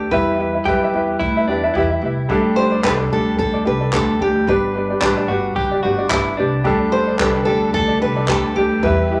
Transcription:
Already playing: A3 D4 G4 A4 D5
0.11 E2 G3 E4 G4 B4 E5, kick
0.39 E4 G4 B4 E5
0.54 E4 B4 E5
0.65 F#2 G3 E4 G4 B4 E5, kick
0.84 E4 B4 E5
0.94 E2 E4 G4 B4 E5
1.19 D2 E4, kick
1.37 E4 B4 E5
1.48 E2 D4 E4 G4 B4 E5
1.64 E4 B4 E5
1.74 E2 E4 G4 B4, kick
1.78 E5
1.91 E4 B4 E5
2.02 C2 E4 G4 B4 E5
2.29 D2 G3 D4 G4 A4 D5, kick
2.56 D4 G4 A4 C5 D5
2.71 D4 A4 D5
2.84 C2 G3 D4 G4 A4 B4 D5, kick, clap
3.00 D4 A4 D5
3.10 D2 D4 G4 A4
3.14 D5
3.39 D2 A4, kick
3.54 D4 A4 D5
3.65 C2 D4 G4 A4 B4 D5
3.81 D4 A4 D5
3.92 D2 D4 G4 A4 D5, kick, clap
4.19 D2 D4 G4 A4 D5
4.47 G1 G3 D4 G4 B4 D5, kick
4.75 D4 G4 B4 D5
4.90 D4 G4 D5
5.01 A1 G3 D4 G4 B4 D5, kick, clap
5.17 D4 G4 D5
5.28 G1 D4 F#4 G4 B4 D5
5.56 F#1 G4, kick
5.71 D4 G4 D5
5.83 G1 D4 F#4 G4 B4 D5
5.98 D4 G4 D5
6.09 G1 D4 E4 G4 B4 D5, kick, clap
6.37 C2 D4 G4 B4 D5
6.64 D2 D3 G3 D4 G4 A4 D5, kick
6.91 D4 G4 A4 C5 D5
7.07 D4 A4 D5
7.19 C2 G3 D4 G4 A4 B4 D5, kick, clap
7.36 D4 A4 D5
7.45 D2 D4 G4 A4 D5
7.74 D2 A4, kick
7.88 D4 A4 D5
8.02 C2 D4 G4 A4 B4 D5
8.16 D4 A4 D5
8.28 D2 D4 G4 A4 D5, kick, clap
8.56 D2 D4 G4 A4 D5
8.83 E2 E3 G3 E4 G4 B4 E5, kick
9.12 E4 G4 B4 E5

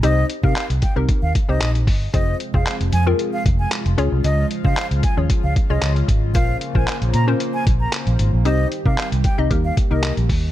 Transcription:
0.03 C2 C4 D#4 G4 C5 D#5, closed hi-hat
0.30 closed hi-hat
0.43 C3 C4 D#4 G4 A#4 F5, kick
0.56 clap, closed hi-hat
0.70 C2, closed hi-hat
0.82 G5, kick, closed hi-hat
0.96 C2 C4 D#4 G4 A#4
1.09 kick, closed hi-hat
1.23 D#2 F5
1.35 kick, closed hi-hat
1.49 C2 C4 D#4 G4 C5 D#5
1.61 A#1, clap, closed hi-hat
1.75 closed hi-hat
1.87 G1, kick, open hi-hat
2.14 F1 C3 F3 G#3 C4 F4 G#4 C5 D#5, kick, closed hi-hat
2.40 closed hi-hat
2.54 F1 C4 F4 G#4 C5 F5, kick
2.66 clap, closed hi-hat
2.80 F1, closed hi-hat
2.93 F2 G#5, closed hi-hat
3.06 C4 F4 G#4 A#4
3.19 closed hi-hat
3.33 F5
3.46 F1, kick, closed hi-hat
3.59 G#5
3.72 clap, closed hi-hat
3.86 F1, closed hi-hat
3.98 C#2 C#3 F3 C#4 F4 G#4 C#5, closed hi-hat
4.12 C2
4.24 C#2 D#5, closed hi-hat
4.51 closed hi-hat
4.64 C#3 C#4 F4 G#4 C5 F5, kick
4.77 clap, closed hi-hat
4.91 C#2, closed hi-hat
5.03 G#5, kick, closed hi-hat
5.17 D#2 C#4 F4 G#4 C#5
5.30 kick, closed hi-hat
5.44 C#2 F5
5.56 kick, closed hi-hat
5.70 C2 C#4 F4 G#4 C#5 D#5
5.82 C#2, clap, closed hi-hat
5.96 closed hi-hat
6.08 G#1, kick, closed hi-hat
6.35 A#1 A#3 C#4 F4 A#4 C5 F5, kick, closed hi-hat
6.61 closed hi-hat
6.75 A#1 C#4 F4 A#4 C5 G#5, kick
6.87 clap, closed hi-hat
7.01 A#1, closed hi-hat
7.14 A#2 A#5, closed hi-hat
7.28 C#4 F4 A#4 C5
7.40 closed hi-hat
7.54 G#5
7.67 A#1, kick, closed hi-hat
7.80 A#5
7.93 clap, closed hi-hat
8.07 A#1, closed hi-hat
8.19 G#1, closed hi-hat
8.33 A#1
8.45 C2 D#3 G3 C4 D#4 G4 C5 D#5, closed hi-hat
8.72 closed hi-hat
8.85 C3 C4 D#4 G4 A#4 F5, kick
8.98 clap, closed hi-hat
9.12 C2, closed hi-hat
9.24 G5, kick, closed hi-hat
9.38 C2 C4 D#4 G4 D#5
9.50 D#2 A#3 D#4 G4 A#4, kick, closed hi-hat
9.65 F5
9.77 muted fingered electric bass stroke, kick, closed hi-hat
9.91 C2 A#3 D#4 G4 A#4 D#5
10.03 clap, closed hi-hat
10.17 A#1, closed hi-hat
10.29 D#2, kick, open hi-hat

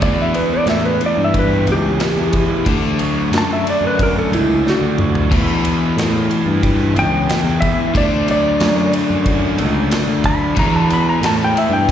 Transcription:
0.01 E2 B2 E3 D5, kick, ride
0.21 E5
0.34 B3 B4, ride
0.53 D5
0.66 A2 E3 E5, snare, ride
0.85 B4
1.01 E4, ride
1.06 D5
1.17 G2
1.24 E5
1.33 G4, kick, ride
1.39 B4
1.66 C#2 B3, ride
1.72 G4
1.98 E4, snare, ride
2.16 E2
2.32 E3, kick, ride
2.65 D2 D3 A3 D4, kick, ride
2.98 F#3, ride
3.31 F#2 F#3, snare, ride
3.38 A5
3.53 E5
3.64 D4, ride
3.70 D5
3.81 F#2
3.87 B4
3.98 F#4, kick, ride
4.03 A#4
4.18 A4
4.30 C#2 A3, ride
4.34 E4
4.63 D4, snare
4.70 F#4
4.81 D2
4.98 F#3, mid tom
5.15 floor tom
5.30 E2 B2 E3, kick, crash, ride
5.65 B3, ride
5.96 A2 E3, snare, ride
6.30 E4, ride
6.46 G2
6.63 G4, kick, ride
6.95 C#2 B3, ride
6.99 G5
7.29 E4, snare, ride
7.43 E2
7.61 E3 E5, kick, ride
7.94 D2 D3 A3 D4 D5, kick, ride
8.27 F#3, ride
8.31 D5
8.60 F#2 F#3, snare, ride
8.93 D4, ride
9.10 F#2
9.26 F#4, kick, ride
9.57 C#2 A3, ride
9.90 D4, snare, ride
10.07 D2
10.23 F#3 B5, kick, ride
10.55 E2 B2 E3, kick, ride
10.59 A#5
10.76 A5
10.89 B3, ride
10.94 B5
11.09 A#5
11.21 A2 E3, snare, ride
11.26 A5
11.44 G5
11.55 E4 E5, ride
11.70 G2 G5
11.89 G4

